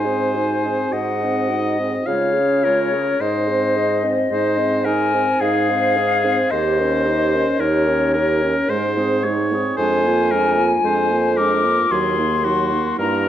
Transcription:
Already playing: G#2 C5 G#5
0.05 C4 G#4
0.34 D#4 F#4
0.63 C4 G#4
0.90 G#2 F#4 D#5 F#5
0.95 D#4
1.19 G#4
1.24 C4
1.48 D#4 F#4
1.77 C4 G#4
2.05 C#3 G#3 F4 C#5 F5
2.33 G#4
2.38 C#4
2.63 G#3 F4 A#4
2.91 C#4 G#4
3.21 G#2 D#4 G#4 C5 D#5
3.48 C4 C5
3.76 D#4 G#4
4.04 C4 C5
4.31 G#2 D#4 G#4 C5
4.59 C4 C5
4.85 D#4 G#4 A#4 G#5
5.14 C4 C5
5.40 G#2 D#4 G#4 F5
5.70 C4 C5
5.97 D#4 G#4
6.24 C4 C5
6.51 D#2 D#4 G4 C5 D#5
6.79 C#4 A#4
7.06 D#4 G4
7.34 C#4 A#4
7.59 D#2 D#4 G4 A#4 C#5
7.87 C#4 A#4
8.14 D#4 G4 A#4
8.43 C#4 A#4
8.69 G#2 G#3 D#4 C5
8.98 C4 G#4
9.24 G#3 D#4 C#5
9.52 C4 G#4
9.76 F2 G#3 C5 G#5
9.81 D4
10.05 A#3 F4
10.31 G#3 D4 A#4
10.58 A#3 F4
10.83 F2 G#3 D4 C5
11.10 A#3 F4
11.37 G#3 D4 A#4 D6
11.64 A#3 F4
11.90 D#2 F#3 F#4 G#4 C6
12.18 A#3 D#4
12.45 F#3 F#4
12.72 A#3 D#4
12.98 G2 A#3 E4 A#4 A#5

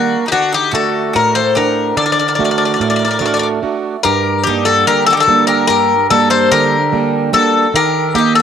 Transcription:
Already playing: D#3 G3 A#3 D4 F#4 A#4
0.26 D#4 G4
0.32 D3 D4 F#4
0.52 D#4 G4
0.71 A3 D4 F#4 A4
1.13 A2 F#4 A#4
1.35 A4 C5
1.55 D4 G4 A#4 F#5
1.97 D3 A4 D5
2.06 A#4 D5
2.12 A#4 D5
2.19 A#4 D5
2.28 A#4 D5
2.35 A3 A#4 D5
2.39 D4 F#4
2.44 A#4 D5
2.51 A#4 D5
2.58 A#4 D5
2.65 A#4 D5
2.74 A#4 D5
2.80 A2 A#4 D5
2.90 A#4 D5
2.96 A#4 D5
3.05 A#4 D5
3.11 A#4 D5
3.19 A3 D4 F#4 A#4 D5
3.26 A#4 D5
3.34 A#4 D5
3.39 A#4 D5
3.62 A3 D4 F#4
4.03 G2 G4 A#4
4.43 G3 A#3 D#4 G4
4.48 D4
4.65 F#4 A4
4.87 D3 G4 A#4
5.06 F#4 A4
5.13 G4
5.17 D#4 A4
5.23 F#4
5.28 G3 A#3 D4
5.47 G4 A#4
5.67 G2 G4 A#4
6.10 G3 A#3 D4 F#4 A4
6.30 A4 C5
6.51 D3 G4 A#4
6.92 G3 A#3 D4
7.33 G3 A#3 D4 F#4 A4
7.74 D#3 G4 A#4
8.15 A#3 D#4 G4
8.35 A4

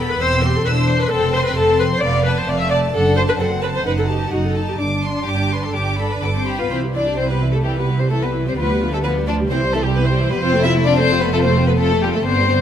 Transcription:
Already playing: E1 E2 B3
0.00 B5
0.09 B4
0.20 E1 E2 C4 C5 E6
0.43 G4 C6
0.55 A4
0.65 E1 E2 D4 B4 E6
0.78 C5
0.89 C6
1.00 B4
1.10 F1 F2 C4 A4 A5
1.33 C5 C6
1.45 B4
1.56 F1 F2 A4 A5
1.79 B4 C6
1.92 C5
2.01 F1 F2 B3 D5 F5
2.25 B4 A5
2.36 C5
2.47 F1 F2 A3 D5 F5
2.59 E5
2.70 D5 A5
2.93 F#1 F#2 D4 A4 F#5
3.16 C5 A5
3.28 B4
3.38 F#1 F#2 C4 A4 F#5
3.62 B4 A5
3.75 C5
3.84 F#1 F#2 D#4 B4 F#5
3.98 A4
4.07 G4 A5
4.31 F#1 F#2 D#4 F#4 F#5
4.45 A4
4.55 A5
4.68 G4
4.79 G1 G2 D4 D6
5.03 C6
5.26 G1 G2 G4 D6
5.51 B4 C6
5.63 A4
5.74 G1 G2 G4 D6
5.98 A4 B5
6.11 B4
6.22 G1 G2 B3 A4 B4 D6
6.35 C4 C5
6.46 G4 B5
6.59 B3 F4 B4
6.70 C2 E3 C4 E4 C5
6.83 G3 G4
6.94 E3 D4 E4 D5
7.06 G3 G4
7.17 E3 C4 E4 C5
7.29 G3 B3 G4 B4
7.41 E3 E4
7.52 G3 A3 G4 A4
7.64 E3 G3 E4 G4
7.76 G3 B3 G4 B4
7.89 E3 E4
7.98 G3 C4 G4 C5
8.10 E3 A3 E4 A4
8.23 G3 B3 G4 B4
8.34 E3 E4
8.46 G3 C4 G4 C5
8.57 D2 F3 B3 F4 B4
8.69 G3 G4
8.81 F3 F4
8.92 G3 A3 G4 A4
9.03 F3 B3 F4 B4
9.16 G3 G4
9.27 F3 D4 F4 D5
9.39 G3 G4
9.49 C2 E3 C4 E4 C5
9.63 G3 G4
9.72 E3 A3 E4 A4
9.84 G3 G4
9.95 E3 B3 E4 B4
10.06 G3 C4 G4 C5
10.18 E3 E4
10.29 G3 B3 G4 B4
10.40 F1 F2 C4 F4 C5
10.54 A3 A4
10.63 C4 E4 F4 E5
10.76 A3 A4
10.85 C4 D4 F4 D5
10.98 A3 C4 A4 C5
11.10 C4 F4
11.21 A3 B3 A4 B4
11.33 A3 C4 F4 A4
11.43 A3 C4 A4 C5
11.57 C4 F4
11.67 A3 B3 A4 B4
11.79 A3 C4 F4 A4
11.91 A3 A4
12.02 G3 C4 F4 G4
12.13 A3 A4
12.25 G1 G2 B3 C4 D4 C5
12.39 G3 B3
12.49 B3 D4

